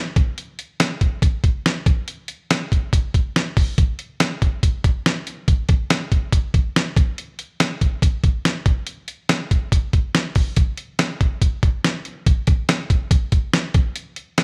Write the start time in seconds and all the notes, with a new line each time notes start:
0.16 kick, closed hi-hat
0.38 closed hi-hat
0.59 closed hi-hat
0.80 snare, closed hi-hat
1.01 kick, closed hi-hat
1.22 kick, closed hi-hat
1.44 kick, closed hi-hat
1.66 snare, closed hi-hat
1.86 kick, closed hi-hat
2.08 closed hi-hat
2.28 closed hi-hat
2.50 snare, closed hi-hat
2.72 kick, closed hi-hat
2.93 kick, closed hi-hat
3.14 kick, closed hi-hat
3.36 snare, closed hi-hat
3.57 kick, open hi-hat
3.78 kick, closed hi-hat
3.99 closed hi-hat
4.20 snare, closed hi-hat
4.42 kick, closed hi-hat
4.63 kick, closed hi-hat
4.84 kick, closed hi-hat
5.06 snare, closed hi-hat
5.27 closed hi-hat
5.48 kick, closed hi-hat
5.69 kick, closed hi-hat
5.90 snare, closed hi-hat
6.12 kick, closed hi-hat
6.32 kick, closed hi-hat
6.54 kick, closed hi-hat
6.76 snare, closed hi-hat
6.97 kick, closed hi-hat
7.18 closed hi-hat
7.39 closed hi-hat
7.60 snare, closed hi-hat
7.81 kick, closed hi-hat
8.02 kick, closed hi-hat
8.24 kick, closed hi-hat
8.45 snare, closed hi-hat
8.66 kick, closed hi-hat
8.87 closed hi-hat
9.08 closed hi-hat
9.29 snare, closed hi-hat
9.51 kick, closed hi-hat
9.72 kick, closed hi-hat
9.93 kick, closed hi-hat
10.15 snare, closed hi-hat
10.35 kick, open hi-hat
10.56 kick, closed hi-hat
10.77 closed hi-hat
10.99 snare, closed hi-hat
11.21 kick, closed hi-hat
11.42 kick, closed hi-hat
11.63 kick, closed hi-hat
11.84 snare, closed hi-hat
12.05 closed hi-hat
12.26 kick, closed hi-hat
12.47 kick, closed hi-hat
12.69 snare, closed hi-hat
12.90 kick, closed hi-hat
13.11 kick, closed hi-hat
13.32 kick, closed hi-hat
13.53 snare, closed hi-hat
13.74 kick, closed hi-hat
13.96 closed hi-hat
14.16 closed hi-hat
14.38 snare, closed hi-hat